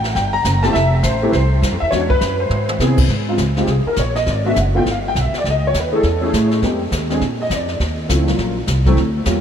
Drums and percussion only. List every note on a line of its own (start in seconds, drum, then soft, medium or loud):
0.04 snare soft
0.15 brush sweep soft
0.15 kick soft
0.15 snare soft
0.45 kick soft
0.45 snare medium
0.45 hi-hat pedal medium
0.63 snare soft
0.74 brush sweep soft
0.74 kick soft
0.74 snare soft
1.03 kick soft
1.03 snare medium
1.03 hi-hat pedal medium
1.33 brush sweep soft
1.33 kick soft
1.33 snare soft
1.62 kick soft
1.62 snare medium
1.62 hi-hat pedal medium
1.92 brush sweep soft
1.92 kick soft
1.92 snare soft
2.10 kick medium
2.21 snare medium
2.21 hi-hat pedal medium
2.51 mid tom soft
2.69 mid tom medium
2.80 snare medium
2.80 hi-hat pedal soft
2.98 kick medium
2.98 crash medium
3.09 brush sweep soft
3.09 snare soft
3.38 kick soft
3.38 snare medium
3.38 hi-hat pedal soft
3.56 snare soft
3.67 brush sweep soft
3.67 kick soft
3.67 snare soft
3.96 kick soft
3.96 snare soft
3.96 hi-hat pedal soft
4.16 snare soft
4.26 brush sweep soft
4.26 kick soft
4.26 snare soft
4.56 kick soft
4.56 snare medium
4.56 hi-hat pedal medium
4.86 brush sweep soft
4.86 kick soft
4.86 snare soft
5.16 kick soft
5.16 snare medium
5.16 hi-hat pedal soft
5.34 snare soft
5.45 brush sweep soft
5.45 kick soft
5.45 snare soft
5.74 kick soft
5.74 snare medium
5.74 hi-hat pedal medium
6.03 brush sweep soft
6.03 kick soft
6.03 snare soft
6.33 kick soft
6.33 snare medium
6.33 hi-hat pedal medium
6.51 snare soft
6.62 brush sweep soft
6.62 kick soft
6.62 snare soft
6.92 kick soft
6.92 snare medium
6.92 hi-hat pedal medium
7.10 snare soft
7.21 brush sweep soft
7.21 kick soft
7.21 snare soft
7.50 kick soft
7.50 snare medium
7.50 hi-hat pedal medium
7.68 snare soft
7.80 brush sweep soft
7.80 kick soft
7.80 snare soft
8.09 kick soft
8.09 snare medium
8.09 hi-hat pedal medium
8.28 snare soft
8.38 brush sweep soft
8.38 kick soft
8.38 snare soft
8.67 kick soft
8.67 snare medium
8.67 hi-hat pedal soft
8.86 kick soft
8.86 snare soft
8.97 brush sweep soft
8.97 kick soft
8.97 snare soft
9.25 kick soft
9.25 snare medium
9.25 hi-hat pedal medium